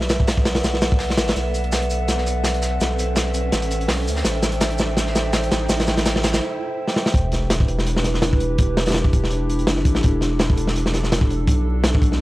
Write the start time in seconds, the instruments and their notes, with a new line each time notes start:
Already playing: sub bass B1, ambient pad A4 B4 D5 F#5, synth texture E5, riser
0.01 snare
0.09 snare, closed hi-hat, shaker
0.20 kick
0.27 snare, closed hi-hat, shaker
0.37 kick
0.45 snare, closed hi-hat, shaker
0.55 snare, closed hi-hat
0.64 sub bass B1, snare, closed hi-hat, shaker
0.74 snare
0.81 snare, closed hi-hat, shaker
0.92 kick
0.99 snare, closed hi-hat, open hi-hat
1.10 snare
1.17 sub bass A1, snare, closed hi-hat, shaker
1.27 snare, closed hi-hat
1.29 snare
1.36 sub bass B1, snare, closed hi-hat, shaker
1.54 closed hi-hat, shaker
1.64 closed hi-hat
1.72 snare, closed hi-hat, shaker
1.82 closed hi-hat
1.90 closed hi-hat, shaker
2.08 snare, closed hi-hat, shaker
2.18 snare
2.27 closed hi-hat, shaker
2.44 snare, closed hi-hat, shaker
2.54 closed hi-hat
2.62 snare, closed hi-hat, shaker
2.80 sub bass B1, snare, closed hi-hat, shaker
2.99 closed hi-hat, shaker
3.16 snare, closed hi-hat, shaker
3.34 closed hi-hat, shaker
3.52 sub bass A1, ambient pad C5 E5 G5, snare, closed hi-hat, shaker
3.62 closed hi-hat
3.71 closed hi-hat, shaker
3.81 closed hi-hat
3.88 sub bass B1, snare, closed hi-hat, open hi-hat
4.07 sub bass D2, closed hi-hat, shaker
4.16 snare
4.25 sub bass A1, snare, closed hi-hat, shaker
4.43 snare, closed hi-hat, shaker
4.52 closed hi-hat
4.61 snare, closed hi-hat, shaker
4.70 closed hi-hat
4.78 snare, shaker
4.97 snare, closed hi-hat, shaker
5.07 snare
5.15 snare, closed hi-hat, shaker
5.33 snare, closed hi-hat, shaker
5.43 closed hi-hat
5.50 sub bass A1, snare, closed hi-hat, shaker
5.69 sub bass A1, snare, closed hi-hat, shaker
5.80 snare, closed hi-hat
5.87 snare, shaker
5.97 snare, closed hi-hat
6.05 snare, closed hi-hat, shaker
6.16 snare
6.23 snare, closed hi-hat, shaker
6.33 snare, closed hi-hat, shaker
6.87 snare
6.96 snare
7.06 snare
7.14 sub bass E1, ambient pad D4 E4 G4 B4, kick, closed hi-hat, sub drop
7.32 snare, closed hi-hat
7.50 snare, closed hi-hat
7.60 kick
7.68 closed hi-hat
7.78 snare
7.87 closed hi-hat
7.96 snare
8.04 snare, closed hi-hat
8.14 snare
8.22 snare, closed hi-hat
8.33 kick
8.40 closed hi-hat
8.58 sub bass E1, kick, closed hi-hat
8.77 snare, closed hi-hat
8.86 snare, closed hi-hat
8.90 snare, closed hi-hat
8.94 snare, closed hi-hat
9.04 kick
9.13 kick, closed hi-hat
9.24 snare
9.30 ambient pad A4, closed hi-hat
9.50 closed hi-hat
9.59 closed hi-hat
9.67 sub bass F#1, snare, closed hi-hat
9.76 snare
9.85 sub bass A1, kick, closed hi-hat
9.95 snare
10.03 sub bass E1, kick, closed hi-hat
10.21 snare, closed hi-hat
10.39 snare, closed hi-hat
10.50 kick
10.57 closed hi-hat
10.67 snare
10.76 closed hi-hat
10.86 snare
10.94 snare, closed hi-hat
11.04 snare
11.12 snare, closed hi-hat
11.21 kick
11.30 sub bass E1, closed hi-hat
11.47 sub bass B1, ambient pad B3 F#4, kick, closed hi-hat
11.84 snare, closed hi-hat
11.95 kick
12.02 kick, closed hi-hat
12.12 snare